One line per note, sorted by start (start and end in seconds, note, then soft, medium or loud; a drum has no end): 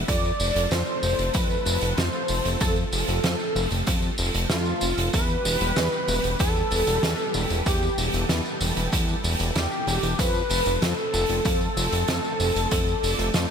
0.08 0.32 F2 loud
0.08 5.10 F3 medium
0.08 5.10 A3 medium
0.08 5.10 C4 medium
0.08 5.10 A4 medium
0.08 0.73 D5 loud
0.08 kick loud
0.08 closed hi-hat loud
0.08 tambourine soft
0.25 tambourine soft
0.40 0.52 F1 medium
0.40 open hi-hat medium
0.40 tambourine medium
0.55 0.67 F1 loud
0.55 closed hi-hat medium
0.55 tambourine soft
0.71 0.83 F2 loud
0.71 1.36 C5 loud
0.71 snare loud
0.71 closed hi-hat loud
0.71 tambourine soft
0.86 tambourine soft
1.03 1.15 F1 loud
1.03 open hi-hat medium
1.03 tambourine medium
1.19 1.30 F1 medium
1.19 closed hi-hat medium
1.19 tambourine soft
1.34 1.58 F2 medium
1.34 1.99 B4 loud
1.34 kick loud
1.34 closed hi-hat loud
1.34 tambourine soft
1.50 tambourine soft
1.65 1.78 F1 loud
1.65 open hi-hat medium
1.65 tambourine medium
1.81 1.94 F1 medium
1.81 closed hi-hat medium
1.81 tambourine soft
1.97 2.09 F2 loud
1.97 2.60 C5 loud
1.97 snare loud
1.97 closed hi-hat loud
1.97 tambourine soft
2.13 tambourine soft
2.28 2.41 F1 loud
2.28 open hi-hat medium
2.28 tambourine medium
2.45 2.57 F1 medium
2.45 closed hi-hat medium
2.45 tambourine soft
2.60 2.84 F2 loud
2.60 2.75 A4 medium
2.60 kick loud
2.60 closed hi-hat loud
2.60 tambourine soft
2.76 tambourine soft
2.92 3.04 F1 medium
2.92 3.75 A4 medium
2.92 open hi-hat medium
2.92 tambourine medium
3.08 3.20 F1 loud
3.08 closed hi-hat medium
3.08 tambourine soft
3.24 3.36 F2 loud
3.24 snare loud
3.24 closed hi-hat loud
3.24 tambourine soft
3.39 tambourine soft
3.56 3.67 F1 loud
3.56 open hi-hat medium
3.56 tambourine medium
3.71 3.83 F1 medium
3.71 closed hi-hat medium
3.71 tambourine soft
3.75 4.15 G4 medium
3.87 4.11 F2 medium
3.87 kick loud
3.87 closed hi-hat loud
3.87 tambourine soft
4.02 tambourine soft
4.18 4.30 F1 loud
4.18 open hi-hat medium
4.18 tambourine medium
4.34 4.46 F1 medium
4.34 closed hi-hat medium
4.34 tambourine soft
4.50 4.74 F2 medium
4.50 5.10 F4 loud
4.50 snare loud
4.50 closed hi-hat medium
4.50 tambourine soft
4.66 tambourine soft
4.81 4.94 F1 medium
4.81 open hi-hat medium
4.81 tambourine medium
4.97 5.09 F1 medium
4.97 closed hi-hat medium
4.97 tambourine soft
5.13 5.37 E2 loud
5.13 10.15 E3 medium
5.13 10.15 G3 medium
5.13 10.15 B3 medium
5.13 10.15 G4 medium
5.13 7.64 B4 medium
5.13 6.36 B4 loud
5.13 kick loud
5.13 closed hi-hat medium
5.13 tambourine soft
5.29 tambourine soft
5.45 5.57 E1 medium
5.45 open hi-hat medium
5.45 tambourine medium
5.61 5.73 E1 loud
5.61 closed hi-hat medium
5.61 tambourine soft
5.76 5.88 E2 loud
5.76 snare loud
5.76 closed hi-hat medium
5.76 tambourine soft
5.92 tambourine soft
6.08 6.20 E1 loud
6.08 open hi-hat medium
6.08 tambourine medium
6.24 6.36 E1 medium
6.24 closed hi-hat medium
6.24 tambourine soft
6.39 6.63 E2 medium
6.39 7.62 A4 loud
6.39 kick loud
6.39 closed hi-hat medium
6.39 tambourine soft
6.56 tambourine soft
6.71 6.83 E1 loud
6.71 open hi-hat medium
6.71 tambourine medium
6.87 6.99 E1 medium
6.87 closed hi-hat medium
6.87 tambourine soft
7.03 7.15 E2 loud
7.03 snare loud
7.03 closed hi-hat loud
7.03 tambourine soft
7.19 tambourine soft
7.34 7.46 E1 loud
7.34 open hi-hat medium
7.34 tambourine medium
7.50 7.62 E1 medium
7.50 closed hi-hat medium
7.50 tambourine soft
7.66 7.90 E2 loud
7.66 8.25 G4 medium
7.66 13.51 A4 medium
7.66 kick loud
7.66 closed hi-hat medium
7.66 tambourine soft
7.83 tambourine soft
7.98 8.09 E1 medium
7.98 open hi-hat medium
7.98 tambourine medium
8.14 8.25 E1 loud
8.14 closed hi-hat medium
8.14 tambourine soft
8.29 8.41 E2 loud
8.29 snare loud
8.29 closed hi-hat loud
8.29 tambourine soft
8.46 tambourine soft
8.61 8.73 E1 loud
8.61 open hi-hat loud
8.61 tambourine medium
8.77 8.88 E1 medium
8.77 closed hi-hat medium
8.77 tambourine soft
8.92 9.16 E2 medium
8.92 kick loud
8.92 closed hi-hat loud
8.92 tambourine soft
9.08 tambourine soft
9.24 9.36 E1 loud
9.24 open hi-hat medium
9.24 tambourine medium
9.39 9.52 E1 loud
9.39 closed hi-hat medium
9.39 tambourine soft
9.55 9.67 E2 loud
9.55 10.20 G4 loud
9.55 snare loud
9.55 closed hi-hat loud
9.55 tambourine soft
9.71 tambourine soft
9.87 9.99 E1 loud
9.87 open hi-hat medium
9.87 tambourine medium
10.03 10.15 E1 medium
10.03 closed hi-hat medium
10.03 tambourine soft
10.19 10.42 F2 loud
10.19 13.51 F3 medium
10.19 13.51 A3 medium
10.19 13.51 C4 medium
10.19 10.83 B4 loud
10.19 kick loud
10.19 closed hi-hat loud
10.19 tambourine soft
10.35 tambourine soft
10.50 10.62 F1 medium
10.50 open hi-hat medium
10.50 tambourine medium
10.66 10.78 F1 loud
10.66 closed hi-hat medium
10.66 tambourine soft
10.82 10.94 F2 loud
10.82 11.13 A4 loud
10.82 snare loud
10.82 closed hi-hat loud
10.82 tambourine soft
10.98 tambourine soft
11.14 11.25 F1 loud
11.14 13.51 A4 loud
11.14 open hi-hat medium
11.14 tambourine medium
11.29 11.41 F1 medium
11.29 closed hi-hat medium
11.29 tambourine soft
11.45 11.69 F2 medium
11.45 kick loud
11.45 closed hi-hat medium
11.45 tambourine soft
11.61 tambourine soft
11.77 11.88 F1 loud
11.77 open hi-hat medium
11.77 tambourine medium
11.92 12.04 F1 medium
11.92 closed hi-hat medium
11.92 tambourine soft
12.08 12.20 F2 loud
12.08 snare loud
12.08 closed hi-hat loud
12.08 tambourine soft
12.24 tambourine soft
12.40 12.52 F1 loud
12.40 open hi-hat medium
12.40 tambourine medium
12.56 12.67 F1 medium
12.56 closed hi-hat medium
12.56 tambourine soft
12.71 12.95 F2 loud
12.71 13.51 D5 medium
12.71 kick loud
12.71 closed hi-hat loud
12.71 tambourine soft
12.88 tambourine soft
13.03 13.15 F1 medium
13.03 open hi-hat medium
13.03 tambourine medium
13.19 13.30 F1 loud
13.19 closed hi-hat medium
13.19 tambourine soft
13.34 13.46 F2 loud
13.34 snare loud
13.34 closed hi-hat loud
13.34 tambourine soft